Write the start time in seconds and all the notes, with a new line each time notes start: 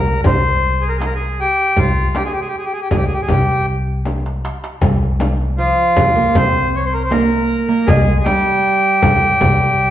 Already playing: C2 A#4
0.07 darbuka ka
0.24 C2 C5, frame drum, darbuka dum
0.81 G#4
0.89 A#4
0.98 G#4, darbuka tek, frame drum
1.06 A#4
1.15 G#4
1.21 darbuka ka
1.40 G4
1.76 C2 F4, frame drum, darbuka dum
1.97 darbuka ka
2.15 G4, darbuka tek, frame drum
2.25 G#4
2.33 G4
2.41 G#4
2.48 G4
2.58 G#4
2.65 G4
2.73 G#4
2.82 G4
2.90 C2 G#4, frame drum, darbuka dum
2.97 G4
3.06 G#4
3.12 G4, darbuka ka
3.22 G#4
3.28 C2 G4, frame drum, darbuka dum
3.68 darbuka ka
4.05 darbuka tek, frame drum
4.26 darbuka ka
4.45 darbuka tek
4.64 darbuka ka
4.82 C2, frame drum, darbuka dum
5.20 darbuka tek, frame drum
5.41 darbuka ka
5.58 F3 F4, darbuka ka
5.96 C2, frame drum, darbuka dum
6.15 A#3, darbuka ka
6.35 C2 C4 C5, frame drum, darbuka dum
6.76 C#5
6.85 C5
6.93 A#4
7.04 C5
7.11 A#3 A#4, darbuka tek, frame drum
7.31 darbuka ka
7.69 A#3
7.86 C2 G#3 G#4, frame drum, darbuka dum
8.19 G#4
8.24 G3 G4, darbuka tek, frame drum
8.45 darbuka ka
8.66 darbuka ka
9.02 C2, frame drum, darbuka dum
9.41 C2, frame drum, darbuka dum